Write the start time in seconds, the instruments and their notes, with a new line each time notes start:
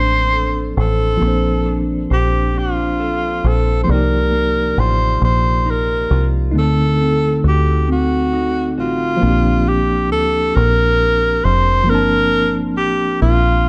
Already playing: fingered electric bass A1, clean electric guitar F3 A#3 D4 C5, tine electric piano F3 A#3 C4 D4 A5, tenor saxophone C5
0.33 clean electric guitar A4
0.77 fingered electric bass A1, tenor saxophone A4, clean electric guitar C5
1.17 tine electric piano F3 A#3, clean electric guitar A#3
1.22 fingered electric bass A#1, tine electric piano C4 D4
1.28 tine electric piano C5
1.65 clean electric guitar D4
2.10 fingered electric bass A#1, tenor saxophone G4, clean electric guitar C5
2.55 clean electric guitar D4, tenor saxophone F4
3.00 clean electric guitar A4
3.44 fingered electric bass A#1, tenor saxophone A4, clean electric guitar C5
3.83 clean electric guitar C3, tine electric piano F3 A#3, tenor saxophone C5
3.89 fingered electric bass C2, tine electric piano D#4 D5, tenor saxophone A#4
3.95 tine electric piano G4
4.32 clean electric guitar A#3
4.78 fingered electric bass A1, clean electric guitar F4, tenor saxophone C5
5.22 fingered electric bass A#1, clean electric guitar A#3, tenor saxophone C5
5.66 clean electric guitar D#4
5.70 tenor saxophone A#4
6.11 fingered electric bass C2, clean electric guitar F4
6.51 fingered electric bass D2, clean electric guitar D3, tine electric piano A3 D#4
6.56 tine electric piano D3 C4, tenor saxophone A4
6.61 tine electric piano A4
7.01 clean electric guitar C4
7.44 fingered electric bass D2, clean electric guitar F#4, tenor saxophone G4
7.88 clean electric guitar C4, tenor saxophone F#4
8.33 clean electric guitar D#4
8.78 fingered electric bass A1, tenor saxophone F4, clean electric guitar F#4
9.17 tine electric piano F3 A#3
9.22 fingered electric bass A#1, tine electric piano C4 D4
9.27 tine electric piano G4
9.69 tenor saxophone G4
10.12 fingered electric bass D2, tenor saxophone A4
10.55 fingered electric bass A#1, tenor saxophone A#4
11.44 fingered electric bass F1, tenor saxophone C5
11.84 tine electric piano F3 A#3
11.89 fingered electric bass G1, tine electric piano C4 D4, tenor saxophone A#4
11.95 tine electric piano A5
12.77 fingered electric bass A1, tenor saxophone G4
13.22 fingered electric bass A#1, tenor saxophone F4